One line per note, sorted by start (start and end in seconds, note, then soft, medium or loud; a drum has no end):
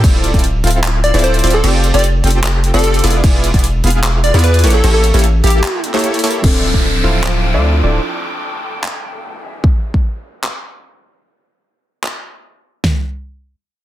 0.04 0.32 D1 loud
0.04 0.32 C4 medium
0.04 0.32 E4 medium
0.04 0.32 F4 medium
0.04 0.32 A4 medium
0.04 0.32 D5 medium
0.04 kick loud
0.04 closed hi-hat medium
0.04 crash medium
0.24 closed hi-hat medium
0.34 0.62 D1 medium
0.34 0.45 C4 medium
0.34 0.45 E4 medium
0.34 0.45 F4 medium
0.34 0.45 A4 medium
0.34 0.45 D5 medium
0.34 kick medium
0.34 closed hi-hat soft
0.39 closed hi-hat medium
0.44 closed hi-hat medium
0.64 1.12 D1 loud
0.64 1.12 C4 medium
0.64 1.12 E4 medium
0.64 1.12 F4 medium
0.64 1.12 A4 medium
0.64 1.12 F5 medium
0.64 closed hi-hat soft
0.67 closed hi-hat medium
0.71 closed hi-hat medium
0.84 clap loud
0.84 closed hi-hat medium
1.04 1.15 D5 loud
1.04 closed hi-hat medium
1.14 1.42 D1 loud
1.14 1.41 C4 loud
1.14 1.41 E4 medium
1.14 1.41 F4 medium
1.14 1.41 A4 medium
1.14 1.41 D5 loud
1.14 closed hi-hat soft
1.19 closed hi-hat medium
1.24 1.52 C5 medium
1.24 closed hi-hat medium
1.34 closed hi-hat soft
1.39 closed hi-hat medium
1.44 1.62 D1 medium
1.44 1.61 C4 medium
1.44 1.61 E4 medium
1.44 1.61 F4 medium
1.44 1.61 A4 medium
1.44 1.61 D5 loud
1.44 closed hi-hat medium
1.44 open hi-hat loud
1.50 1.65 A4 medium
1.50 closed hi-hat medium
1.64 1.92 F1 loud
1.64 1.92 C4 medium
1.64 1.92 F4 medium
1.64 1.92 G4 medium
1.64 1.92 A4 medium
1.64 1.92 D5 medium
1.64 closed hi-hat medium
1.64 crash medium
1.84 closed hi-hat medium
1.94 2.22 F1 medium
1.94 2.05 C4 medium
1.94 2.05 F4 medium
1.94 2.05 G4 medium
1.94 2.05 A4 medium
1.94 2.05 D5 medium
1.94 2.05 D5 loud
1.94 closed hi-hat medium
1.99 closed hi-hat medium
2.04 closed hi-hat medium
2.24 2.72 F1 loud
2.24 2.72 C4 medium
2.24 2.72 F4 medium
2.24 2.72 G4 medium
2.24 2.72 A4 medium
2.24 2.72 G5 medium
2.24 closed hi-hat soft
2.27 closed hi-hat medium
2.30 closed hi-hat medium
2.44 clap loud
2.44 closed hi-hat medium
2.64 closed hi-hat medium
2.74 3.02 F1 loud
2.74 3.01 C4 loud
2.74 3.01 F4 medium
2.74 3.01 G4 medium
2.74 2.82 A4 medium
2.74 3.01 A4 medium
2.74 3.01 D5 loud
2.74 closed hi-hat soft
2.79 closed hi-hat medium
2.84 3.08 A4 medium
2.84 closed hi-hat medium
2.94 closed hi-hat medium
2.99 closed hi-hat medium
3.04 3.22 E1 loud
3.04 3.21 B3 medium
3.04 3.21 E4 medium
3.04 3.21 F4 medium
3.04 3.21 G#4 medium
3.04 3.21 D5 loud
3.04 closed hi-hat medium
3.04 open hi-hat loud
3.10 closed hi-hat medium
3.24 3.52 B3 medium
3.24 3.52 G#4 medium
3.24 kick loud
3.24 closed hi-hat medium
3.24 crash soft
3.44 closed hi-hat medium
3.54 3.82 E1 medium
3.54 3.65 B3 medium
3.54 3.65 E4 medium
3.54 3.65 F4 medium
3.54 3.65 G#4 medium
3.54 3.65 D5 medium
3.54 kick medium
3.54 closed hi-hat medium
3.59 closed hi-hat medium
3.64 closed hi-hat medium
3.84 4.32 E1 loud
3.84 4.32 B3 medium
3.84 4.32 E4 medium
3.84 4.32 F4 medium
3.84 4.32 G#4 medium
3.84 4.32 F5 medium
3.84 closed hi-hat soft
3.87 closed hi-hat medium
3.90 closed hi-hat medium
4.04 clap loud
4.04 closed hi-hat medium
4.24 4.35 D5 medium
4.24 closed hi-hat medium
4.34 4.65 E2 loud
4.34 4.61 B3 medium
4.34 4.61 E4 medium
4.34 4.61 F4 medium
4.34 4.61 G#4 medium
4.34 4.61 D5 loud
4.34 closed hi-hat medium
4.39 closed hi-hat medium
4.44 4.68 B4 medium
4.44 closed hi-hat medium
4.54 closed hi-hat medium
4.59 closed hi-hat medium
4.64 4.82 A1 loud
4.64 4.81 A#3 medium
4.64 4.81 E4 medium
4.64 4.81 G4 medium
4.64 4.81 A4 medium
4.64 4.81 C#5 loud
4.64 closed hi-hat medium
4.64 open hi-hat loud
4.70 4.85 A4 medium
4.70 closed hi-hat medium
4.84 5.12 A1 loud
4.84 5.12 A#3 medium
4.84 5.12 E4 medium
4.84 5.12 G4 medium
4.84 5.12 A4 medium
4.84 5.12 C#5 medium
4.84 closed hi-hat medium
4.84 crash soft
4.94 5.05 A4 medium
5.04 closed hi-hat medium
5.14 5.42 A1 medium
5.14 5.25 A#3 medium
5.14 5.25 E4 medium
5.14 5.25 G4 medium
5.14 5.25 A4 medium
5.14 5.25 C#5 medium
5.14 closed hi-hat medium
5.19 closed hi-hat medium
5.24 closed hi-hat medium
5.44 5.64 A1 loud
5.44 5.92 A#3 medium
5.44 5.92 E4 medium
5.44 5.92 G4 medium
5.44 5.84 G4 loud
5.44 5.92 A4 medium
5.44 5.92 G5 medium
5.44 closed hi-hat medium
5.47 closed hi-hat medium
5.50 closed hi-hat medium
5.64 clap loud
5.64 closed hi-hat medium
5.84 closed hi-hat medium
5.94 6.21 A#3 loud
5.94 6.21 E4 medium
5.94 6.21 G4 medium
5.94 6.21 A4 medium
5.94 6.21 C#5 loud
5.94 clap soft
5.94 closed hi-hat medium
5.99 closed hi-hat medium
6.04 closed hi-hat medium
6.14 closed hi-hat medium
6.19 closed hi-hat medium
6.24 6.41 A#3 medium
6.24 6.41 E4 medium
6.24 6.41 G4 medium
6.24 6.41 A4 medium
6.24 6.41 C#5 loud
6.24 closed hi-hat medium
6.24 open hi-hat loud
6.31 closed hi-hat medium
6.42 6.72 D1 medium
6.42 7.99 F3 medium
6.42 7.99 C4 medium
6.42 6.72 C4 medium
6.42 8.00 D4 medium
6.42 6.72 E4 medium
6.42 6.72 F4 medium
6.42 6.72 A4 medium
6.42 8.02 C5 medium
6.42 9.61 D6 medium
6.42 8.02 E6 medium
6.42 kick loud
6.42 crash medium
6.42 downlifter medium
6.46 8.01 A4 loud
6.74 6.85 C4 medium
6.74 6.85 E4 medium
6.74 6.85 F4 medium
6.74 6.85 A4 medium
6.74 6.85 D5 medium
6.74 kick medium
7.04 7.56 D1 medium
7.04 7.52 C4 medium
7.04 7.52 E4 medium
7.04 7.52 F4 medium
7.04 7.52 A4 medium
7.04 7.52 F5 medium
7.24 clap medium
7.54 7.82 D2 medium
7.54 7.81 C4 medium
7.54 7.81 E4 medium
7.54 7.81 F4 medium
7.54 7.81 A4 medium
7.54 7.81 D5 loud
7.84 8.00 D1 medium
7.84 8.01 C4 medium
7.84 8.01 E4 medium
7.84 8.01 F4 medium
7.84 8.01 A4 medium
7.84 8.01 D5 medium
8.04 9.42 A4 medium
8.04 9.42 G5 medium
8.84 clap medium
9.44 9.64 G#4 medium
9.44 9.63 E5 medium
9.64 kick loud
9.94 kick medium
10.44 clap medium
12.04 clap medium
12.84 snare medium
12.84 floor tom medium